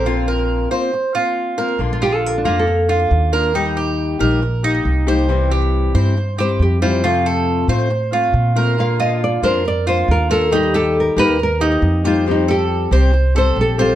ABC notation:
X:1
M:4/4
L:1/16
Q:1/4=138
K:Bb
V:1 name="Cuban tres"
F2 B4 c4 F4 B2 | z2 F4 B,4 F4 B2 | E2 G4 B4 E4 c2- | c2 G4 c4 G4 c2 |
F2 A4 c4 F4 B2- | B2 F4 B4 F4 B2 | E2 G4 B4 E4 c2- | c2 A4 c4 A4 c2 |]
V:2 name="Nylon-string guitar"
B6 z8 z2 | z F G A B D F A8- A- | A z12 z3 | z8 z2 c2 G2 F2- |
F4 z12 | f2 e2 d2 c2 d2 c2 B2 A2 | G2 A2 B2 _c2 B6 F2 | E2 G2 z6 c2 A2 F2 |]
V:3 name="Steel-string acoustic guitar"
[D,B,CF]6 [B,CF]2 z2 [B,CF]4 [B,CF]2 | [D,B,DF]6 [B,DF]2 z2 [B,DF]4 [B,DF]2 | [E,G,B,EG]6 [G,B,EG]2 z2 [B,EG]4 [G,B,EG]2 | [C,=E,G,C=E]6 [E,G,CE]2 z2 [G,CE]4 [E,G,CE]2 |
[C,F,A,CF]6 [F,A,CF]2 z2 [A,CF]4 [F,A,CF]2 | [D,B,DF]6 [B,DF]2 z2 [B,DF]4 [B,DF]2 | [E,G,B,EG]6 [G,B,EG]2 z2 [B,EG]4 [G,B,EG]2 | [F,G,CG]6 [G,CG]2 z2 [G,CG]4 [G,CG]2 |]
V:4 name="Upright bass" clef=bass
B,,,6 z8 z2 | B,,,6 F,,6 E,,4- | E,,6 B,,,6 C,,4- | C,,6 G,,6 F,,4- |
F,,6 A,,6 B,,4- | B,,6 F,,6 E,,4- | E,,6 E,,6 F,,4- | F,,6 C,,6 B,,,4 |]